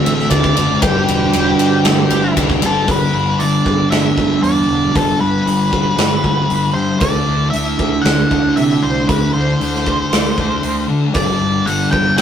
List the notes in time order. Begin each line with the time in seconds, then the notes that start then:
Already playing: D3 A3 C4 F#4 C5 E5
0.05 A1 D3 A3 D4, ride
0.19 snare
0.30 D2 D3 A3 D4 D5, kick, ride
0.44 kick
0.56 F#1 A3 D4, ride
0.81 G1 G2 D3 G3 D4 F#4 G4 B4, kick, ride
1.07 E1, ride
1.33 E1 G2 D3 G3, ride
1.58 G2, ride
1.83 G1, snare, ride
2.10 G1 G2 D3 G3, ride
2.36 C2 G2 D3 G3, kick, ride
2.50 kick
2.61 G1 D3 G3, ride
2.66 A4
2.86 G1 G2 D3 G3, kick, open hi-hat
2.91 B4
3.13 G1 D3 G3
3.39 G1 G2 D3 G3 D5, open hi-hat
3.65 G1 D3 G3, kick
3.90 G1 G2 D3 G3 E5, snare, open hi-hat
4.16 G1 D3 G3, kick
4.41 E2 G2 D3 G3 D5, open hi-hat
4.67 E1 D3 G3
4.93 G1 G2 D3 G3 A4, kick, open hi-hat
5.19 G1 D3 G3 B4
5.46 G1 G2 D3 G3, open hi-hat
5.72 D3 G3, kick
5.96 G1 G2 D3 G3, snare, open hi-hat
6.23 G1 D3 G3, kick
6.49 G1 G2 D3 G3, open hi-hat
6.74 G2 D3 G3 C5
7.00 D2 D3 A3 D4 E4 A4 D5, kick, open hi-hat
7.26 D2 A3 D4
7.50 D2 D3 A3 D4 E5, open hi-hat
7.78 D2 A3 D4, kick
8.02 D2 D3 A3 F#5, open hi-hat
8.06 D4, snare
8.30 D2 A3 D4, kick
8.56 C3 D3 A3 D4 E5, open hi-hat
8.82 C2 A3 D4 C5
9.08 D2 D3 A3 D4 B4, kick, open hi-hat
9.34 D2 A3 D4 C5
9.61 D2 D3 A3 D4, open hi-hat
9.75 snare
9.85 A3 D4, kick
10.12 D2 D3 A3 D4, snare, open hi-hat
10.37 D2 A3 D4, kick
10.62 D2 D3 A3 D4, open hi-hat
10.88 D3 A3 D4
11.13 G1 G2 D3 G3 D4 D5, kick, open hi-hat
11.40 G1 D3 G3
11.66 G1 G2 D3 G3 F#5, open hi-hat
11.91 G1 D3 G3 G5, kick
12.17 G1 G2 D3 G5, snare, open hi-hat